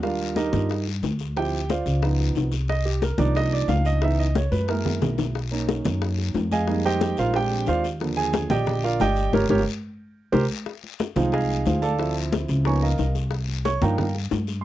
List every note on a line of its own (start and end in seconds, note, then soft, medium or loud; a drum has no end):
0.00 0.47 D#2 medium
0.00 0.50 G3 medium
0.00 0.51 D4 soft
0.00 0.34 F4 medium
0.00 0.34 A#4 medium
0.00 0.34 D5 medium
0.00 0.34 F5 medium
0.00 high bongo medium
0.00 high conga soft
0.00 long guiro medium
0.20 high conga soft
0.36 0.83 D#4 medium
0.36 0.83 G4 medium
0.36 0.83 A#4 medium
0.36 0.83 D#5 medium
0.36 high bongo medium
0.36 high conga medium
0.36 short guiro medium
0.52 0.99 G2 medium
0.52 0.67 G3 soft
0.52 0.67 D4 soft
0.52 0.68 F4 soft
0.52 high bongo soft
0.52 high conga medium
0.52 low conga medium
0.52 short guiro medium
0.70 high bongo medium
0.70 high conga soft
0.70 long guiro medium
0.87 high bongo soft
0.87 high conga soft
1.03 1.80 D2 medium
1.03 high bongo soft
1.03 low bongo medium
1.03 high conga medium
1.03 short guiro medium
1.19 high bongo soft
1.19 short guiro medium
1.36 1.58 F3 medium
1.36 1.59 C4 soft
1.36 1.59 E4 medium
1.36 1.68 G4 medium
1.36 1.68 G5 medium
1.36 high bongo medium
1.36 high conga soft
1.36 long guiro medium
1.53 high conga soft
1.69 2.17 F4 medium
1.69 2.01 C5 medium
1.69 2.01 D5 medium
1.69 2.16 F5 medium
1.69 high bongo medium
1.69 high conga medium
1.69 short guiro medium
1.86 2.32 C#2 loud
1.86 high bongo soft
1.86 high conga soft
1.86 short guiro medium
2.02 2.50 F3 soft
2.02 2.50 B3 soft
2.02 2.51 D#4 medium
2.02 high bongo medium
2.02 high conga soft
2.02 long guiro medium
2.19 high bongo soft
2.19 high conga soft
2.35 3.13 C2 medium
2.35 high bongo soft
2.35 low bongo medium
2.35 high conga soft
2.35 short guiro medium
2.52 high bongo soft
2.52 high conga soft
2.52 short guiro medium
2.68 2.85 D#5 medium
2.68 high bongo medium
2.68 high conga soft
2.68 long guiro medium
2.85 3.02 G4 medium
2.85 high conga soft
3.02 3.19 A#4 medium
3.02 high bongo medium
3.02 high conga medium
3.02 short guiro medium
3.18 3.65 C2 medium
3.18 3.98 F3 medium
3.18 3.98 A#3 soft
3.18 3.98 D4 medium
3.18 3.99 D#4 medium
3.18 3.35 D5 medium
3.18 high bongo soft
3.18 high conga medium
3.18 low conga medium
3.18 short guiro medium
3.35 3.52 D#5 loud
3.35 high bongo medium
3.35 high conga soft
3.35 long guiro medium
3.52 3.69 D5 medium
3.52 high bongo soft
3.52 high conga soft
3.68 4.46 C#2 medium
3.68 3.85 F5 medium
3.68 high bongo soft
3.68 low bongo medium
3.68 high conga medium
3.68 short guiro medium
3.85 4.02 D#5 medium
3.85 high bongo soft
3.85 short guiro medium
4.02 4.24 E3 medium
4.02 4.25 B3 medium
4.02 4.25 D#4 medium
4.02 4.19 E5 loud
4.02 high bongo medium
4.02 high conga soft
4.02 long guiro medium
4.19 4.35 D#5 medium
4.19 high conga soft
4.35 4.52 C#5 medium
4.35 high bongo medium
4.35 high conga medium
4.35 short guiro medium
4.52 4.98 F#2 loud
4.52 4.68 B4 medium
4.52 high bongo soft
4.52 high conga medium
4.52 short guiro medium
4.68 5.31 G#3 medium
4.68 5.32 A#3 soft
4.68 5.32 E4 medium
4.68 5.15 A#4 medium
4.68 high bongo medium
4.68 long guiro medium
4.85 high bongo medium
4.85 low conga medium
5.02 5.79 B1 medium
5.02 high bongo medium
5.02 low conga medium
5.02 short guiro medium
5.18 low bongo medium
5.18 low conga medium
5.18 short guiro medium
5.35 high bongo medium
5.35 high conga soft
5.35 long guiro medium
5.51 6.64 A#3 medium
5.51 6.64 C#4 soft
5.51 6.64 D#4 medium
5.51 high conga soft
5.69 high bongo medium
5.69 high conga medium
5.69 short guiro medium
5.85 6.31 F#2 loud
5.85 high bongo soft
5.85 high conga medium
5.85 low conga medium
5.85 short guiro medium
6.02 high bongo medium
6.02 high conga soft
6.02 long guiro medium
6.18 high bongo soft
6.18 high conga soft
6.34 7.12 F2 medium
6.34 high bongo soft
6.34 low bongo medium
6.34 high conga medium
6.34 short guiro medium
6.51 6.83 G#4 medium
6.51 6.83 D#5 medium
6.51 6.83 F5 medium
6.51 6.83 G#5 loud
6.51 high bongo soft
6.51 high conga medium
6.51 short guiro medium
6.67 7.31 G3 medium
6.67 7.31 G#3 medium
6.67 7.31 A#3 medium
6.67 7.32 D#4 medium
6.67 high bongo medium
6.67 high conga soft
6.67 long guiro medium
6.85 7.16 G4 medium
6.85 7.16 C5 medium
6.85 7.16 D#5 medium
6.85 7.16 G5 loud
6.85 high conga soft
7.01 high bongo medium
7.01 high conga medium
7.01 short guiro medium
7.17 7.64 A#1 medium
7.17 7.35 F4 medium
7.17 7.34 A#4 medium
7.17 7.35 C5 medium
7.17 7.34 F5 loud
7.17 high bongo soft
7.17 high conga soft
7.17 short guiro medium
7.34 7.82 G#3 medium
7.34 7.82 C4 soft
7.34 7.83 D4 medium
7.34 7.66 G4 medium
7.34 7.66 G5 loud
7.34 high bongo medium
7.34 high conga soft
7.34 long guiro medium
7.51 high bongo soft
7.51 high conga soft
7.66 8.45 D#2 medium
7.66 7.84 F4 medium
7.66 7.84 C5 medium
7.66 7.84 D5 medium
7.66 7.84 F5 loud
7.66 high bongo soft
7.66 low bongo medium
7.66 high conga soft
7.66 short guiro medium
7.84 high bongo soft
7.84 high conga soft
7.84 short guiro medium
8.00 9.30 D3 medium
8.00 9.29 F3 medium
8.00 9.30 A#3 soft
8.00 high bongo medium
8.00 high conga soft
8.00 long guiro medium
8.17 8.48 G#4 medium
8.17 8.48 G#5 loud
8.17 high conga soft
8.33 high bongo medium
8.33 high conga loud
8.33 short guiro medium
8.50 8.97 A#1 loud
8.50 8.82 G4 medium
8.50 8.81 D5 medium
8.50 8.82 D#5 medium
8.50 8.81 G5 medium
8.50 high conga loud
8.50 low conga medium
8.50 short guiro medium
8.67 high bongo medium
8.67 high conga soft
8.67 low conga medium
8.67 long guiro medium
8.84 9.00 F4 medium
8.84 9.00 A#4 medium
8.84 9.00 D5 medium
8.84 9.00 F5 medium
8.84 high bongo soft
8.84 high conga soft
9.00 9.31 G1 medium
9.00 9.32 G4 medium
9.00 9.32 D5 medium
9.00 9.32 D#5 medium
9.00 9.31 G5 loud
9.00 high bongo soft
9.00 low bongo medium
9.00 high conga medium
9.00 short guiro medium
9.16 high bongo soft
9.16 short guiro medium
9.33 9.46 G1 loud
9.33 9.44 G4 medium
9.33 9.44 A#4 loud
9.33 9.44 C#5 loud
9.33 low bongo medium
9.33 high conga medium
9.33 long guiro loud
9.49 9.62 G1 loud
9.49 9.61 G4 loud
9.49 9.61 A#4 medium
9.49 9.60 C#5 loud
9.49 low bongo loud
9.49 high conga medium
9.49 long guiro medium
10.32 10.45 C2 medium
10.32 10.43 G4 medium
10.32 10.43 A#4 loud
10.32 10.43 C5 loud
10.32 low bongo loud
10.32 high conga medium
10.32 long guiro medium
10.66 high bongo medium
10.66 high conga soft
10.66 long guiro medium
10.84 high conga soft
10.99 high bongo medium
10.99 high conga medium
10.99 short guiro medium
11.16 11.62 C2 medium
11.16 11.95 F3 medium
11.16 11.95 G#3 medium
11.16 11.95 D#4 medium
11.16 11.32 F4 medium
11.16 11.32 G#4 medium
11.16 11.33 C5 medium
11.16 11.32 F5 medium
11.16 high bongo soft
11.16 high conga medium
11.16 low conga medium
11.16 short guiro medium
11.32 11.64 G#4 medium
11.32 11.64 D#5 medium
11.32 11.64 F5 medium
11.32 11.64 G#5 loud
11.32 high bongo medium
11.32 high conga soft
11.32 long guiro medium
11.50 high bongo soft
11.50 high conga soft
11.66 12.43 D2 medium
11.66 11.83 F4 medium
11.66 11.83 G#4 medium
11.66 11.82 C5 medium
11.66 11.81 F5 medium
11.66 high bongo soft
11.66 low bongo medium
11.66 high conga medium
11.66 short guiro medium
11.82 12.13 A4 medium
11.82 12.13 D5 medium
11.82 12.13 F5 medium
11.82 12.13 A5 loud
11.82 high bongo soft
11.82 short guiro medium
11.99 12.62 F3 medium
11.99 12.62 C4 soft
11.99 12.62 E4 medium
11.99 high bongo medium
11.99 high conga soft
11.99 long guiro medium
12.16 high conga soft
12.32 high bongo medium
12.32 high conga loud
12.32 short guiro medium
12.48 12.95 C#2 loud
12.48 high bongo soft
12.48 high conga soft
12.48 short guiro medium
12.65 12.88 F3 medium
12.65 12.88 A#3 soft
12.65 12.88 B3 medium
12.65 12.88 D#4 medium
12.65 12.82 C#5 medium
12.65 12.82 G#5 medium
12.65 12.81 A#5 medium
12.65 12.82 C#6 medium
12.65 high bongo medium
12.65 high conga soft
12.65 long guiro medium
12.82 13.13 A#4 medium
12.82 13.13 D#5 medium
12.82 13.13 F5 medium
12.82 13.13 A#5 medium
12.82 high bongo soft
12.82 high conga soft
12.98 13.76 C2 medium
12.98 high bongo soft
12.98 low bongo medium
12.98 high conga soft
12.98 short guiro medium
13.15 high bongo soft
13.15 high conga soft
13.15 short guiro medium
13.31 high bongo medium
13.31 high conga soft
13.31 long guiro medium
13.49 high conga soft
13.65 13.81 C#5 medium
13.65 13.81 C#6 loud
13.65 high bongo medium
13.65 high conga medium
13.65 short guiro medium
13.81 14.28 G2 medium
13.81 14.04 F3 medium
13.81 14.04 A#3 medium
13.81 14.04 D4 medium
13.81 14.04 D#4 medium
13.81 14.13 A#4 medium
13.81 14.13 F5 medium
13.81 14.13 G5 medium
13.81 14.13 A#5 medium
13.81 high bongo soft
13.81 high conga medium
13.81 low conga medium
13.81 short guiro medium
13.98 high bongo medium
13.98 high conga soft
13.98 low conga medium
13.98 long guiro medium
14.15 high bongo soft
14.15 high conga soft
14.31 14.64 G2 medium
14.31 high bongo soft
14.31 low bongo medium
14.31 high conga medium
14.31 short guiro medium
14.47 high bongo soft
14.47 short guiro medium
14.61 14.64 C6 medium